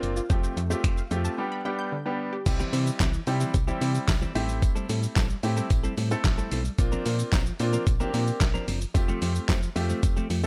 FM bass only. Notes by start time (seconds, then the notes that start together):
0.03 F#1
0.30 F1
0.57 F2
0.84 F1
1.11 F2
2.46 C2
2.73 C3
3.00 C2
3.27 C3
3.54 C2
3.81 C3
4.08 C2
4.35 A1
4.89 A2
5.16 A1
5.43 A2
5.71 A1
5.98 A2
6.24 A1
6.52 B1
6.79 A#1
7.06 A#2
7.33 A#1
7.60 A#2
7.87 A#1
8.14 A#2
8.41 A#1
8.68 F#1
8.95 F1
9.22 F2
9.49 F1
9.76 F2
10.03 F1
10.30 F2